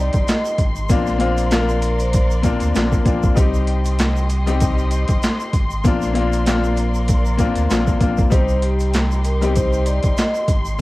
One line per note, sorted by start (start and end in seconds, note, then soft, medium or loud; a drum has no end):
0.00 0.51 G3 medium
0.00 0.51 C4 medium
0.00 0.51 D#4 medium
0.00 0.87 D#4 medium
0.00 0.52 G4 loud
0.00 0.87 G4 medium
0.00 0.24 D5 medium
0.00 3.33 C6 medium
0.13 0.25 G1 medium
0.13 kick medium
0.13 closed hi-hat medium
0.13 shaker soft
0.28 snare loud
0.28 clap medium
0.28 closed hi-hat medium
0.28 shaker medium
0.45 shaker medium
0.58 0.91 G#1 loud
0.58 kick medium
0.58 closed hi-hat medium
0.58 shaker soft
0.76 shaker soft
0.89 2.57 A#1 loud
0.89 1.16 A#3 medium
0.89 1.17 C4 medium
0.89 1.18 D4 medium
0.89 1.19 F4 loud
0.89 3.34 A#4 medium
0.89 3.34 D5 medium
0.89 kick loud
0.89 closed hi-hat medium
0.89 shaker medium
1.07 snare soft
1.07 shaker soft
1.18 1.48 A#3 loud
1.18 1.48 C4 medium
1.18 1.49 D4 medium
1.18 1.49 F4 loud
1.18 1.48 C5 medium
1.18 closed hi-hat medium
1.38 closed hi-hat medium
1.38 shaker medium
1.51 2.37 A#3 medium
1.51 2.38 C4 medium
1.51 2.38 D4 medium
1.51 2.38 F4 loud
1.51 1.96 A#4 medium
1.51 snare loud
1.51 clap medium
1.51 closed hi-hat loud
1.51 shaker medium
1.69 shaker soft
1.82 closed hi-hat medium
1.82 shaker soft
1.99 2.27 C5 medium
1.99 closed hi-hat medium
1.99 shaker soft
2.13 kick loud
2.13 closed hi-hat medium
2.13 shaker medium
2.31 shaker soft
2.42 2.72 A#3 medium
2.42 2.72 C4 medium
2.42 2.73 D4 medium
2.42 2.73 F4 medium
2.42 kick medium
2.42 closed hi-hat medium
2.42 shaker medium
2.60 2.73 D2 loud
2.60 closed hi-hat medium
2.60 shaker soft
2.74 3.00 A#1 loud
2.74 3.03 A#3 medium
2.74 3.04 C4 medium
2.74 3.04 D4 medium
2.74 3.05 F4 medium
2.74 snare loud
2.74 clap medium
2.74 closed hi-hat loud
2.74 shaker medium
2.92 kick medium
2.92 shaker medium
3.05 3.31 A#1 loud
3.05 3.34 A#3 medium
3.05 3.34 C4 medium
3.05 3.35 D4 medium
3.05 3.35 F4 medium
3.05 kick loud
3.05 closed hi-hat medium
3.05 shaker soft
3.23 kick medium
3.23 shaker soft
3.35 5.05 C2 loud
3.35 4.22 G3 medium
3.35 4.22 C4 medium
3.35 4.23 D#4 medium
3.35 5.82 G4 medium
3.35 4.23 G4 loud
3.35 5.82 D#5 medium
3.35 8.28 C6 medium
3.35 kick loud
3.35 closed hi-hat medium
3.35 shaker medium
3.54 shaker soft
3.67 closed hi-hat medium
3.85 closed hi-hat medium
3.85 shaker medium
3.99 snare loud
3.99 clap loud
3.99 closed hi-hat loud
3.99 shaker medium
4.16 shaker soft
4.30 closed hi-hat medium
4.30 shaker soft
4.46 5.46 G3 medium
4.46 5.46 C4 medium
4.46 5.46 D#4 medium
4.46 5.47 G4 loud
4.46 closed hi-hat medium
4.46 shaker soft
4.61 kick loud
4.61 closed hi-hat medium
4.61 shaker medium
4.78 shaker soft
4.91 closed hi-hat medium
4.91 shaker medium
5.08 5.20 G1 medium
5.08 kick medium
5.08 closed hi-hat medium
5.08 shaker soft
5.23 snare loud
5.23 clap medium
5.23 closed hi-hat medium
5.23 shaker medium
5.40 shaker medium
5.53 5.86 G#1 medium
5.53 kick medium
5.53 closed hi-hat medium
5.53 shaker soft
5.70 shaker soft
5.84 7.52 A#1 loud
5.84 6.11 A#3 medium
5.84 6.12 C4 medium
5.84 6.13 D4 medium
5.84 6.14 F4 loud
5.84 8.29 A#4 medium
5.84 8.29 D5 medium
5.84 kick loud
5.84 closed hi-hat medium
5.84 shaker medium
6.02 snare soft
6.02 shaker soft
6.13 6.43 A#3 loud
6.13 6.43 C4 medium
6.13 6.44 D4 medium
6.13 6.44 F4 loud
6.13 closed hi-hat medium
6.33 closed hi-hat medium
6.33 shaker medium
6.46 7.32 A#3 medium
6.46 7.33 C4 medium
6.46 7.33 D4 medium
6.46 7.33 F4 loud
6.46 snare loud
6.46 clap medium
6.46 closed hi-hat loud
6.46 shaker medium
6.64 shaker soft
6.77 closed hi-hat medium
6.77 shaker soft
6.94 shaker soft
7.08 kick loud
7.08 closed hi-hat medium
7.08 shaker medium
7.25 shaker soft
7.37 7.67 A#3 medium
7.37 7.67 C4 medium
7.37 7.68 D4 medium
7.37 7.68 F4 medium
7.37 kick medium
7.37 closed hi-hat medium
7.37 shaker medium
7.55 7.67 D2 loud
7.55 closed hi-hat medium
7.55 shaker soft
7.70 7.95 A#1 loud
7.70 7.98 A#3 medium
7.70 7.99 C4 medium
7.70 7.99 D4 medium
7.70 8.00 F4 medium
7.70 snare loud
7.70 clap medium
7.70 closed hi-hat loud
7.70 shaker medium
7.87 kick medium
7.87 shaker medium
8.00 8.25 A#1 loud
8.00 8.29 A#3 medium
8.00 8.29 C4 medium
8.00 8.30 D4 medium
8.00 8.30 F4 medium
8.00 kick medium
8.00 closed hi-hat medium
8.00 shaker soft
8.18 kick medium
8.18 shaker medium
8.30 10.00 C2 loud
8.30 9.17 G3 medium
8.30 9.17 C4 medium
8.30 9.18 D#4 medium
8.30 10.77 D#4 medium
8.30 10.77 G4 medium
8.30 9.18 G4 loud
8.30 8.60 C5 loud
8.30 10.81 C6 medium
8.30 kick loud
8.30 closed hi-hat medium
8.30 shaker medium
8.49 shaker soft
8.62 8.91 G4 medium
8.62 closed hi-hat medium
8.80 closed hi-hat medium
8.80 shaker medium
8.94 snare loud
8.94 clap medium
8.94 closed hi-hat medium
8.94 shaker medium
9.11 shaker soft
9.24 9.40 A#4 medium
9.24 closed hi-hat medium
9.24 shaker soft
9.41 10.40 G3 medium
9.41 10.41 C4 medium
9.41 10.41 D#4 medium
9.41 10.41 G4 loud
9.41 closed hi-hat medium
9.41 shaker soft
9.55 9.83 C5 medium
9.55 kick loud
9.55 closed hi-hat medium
9.55 shaker medium
9.73 shaker soft
9.86 10.14 D5 medium
9.86 closed hi-hat medium
9.86 shaker medium
10.03 10.15 G1 medium
10.03 kick medium
10.03 closed hi-hat medium
10.03 shaker soft
10.18 10.45 D#5 medium
10.18 snare loud
10.18 clap medium
10.18 closed hi-hat loud
10.18 shaker medium
10.35 shaker medium
10.48 10.81 G#1 medium
10.48 kick loud
10.48 closed hi-hat medium
10.48 shaker soft
10.65 shaker soft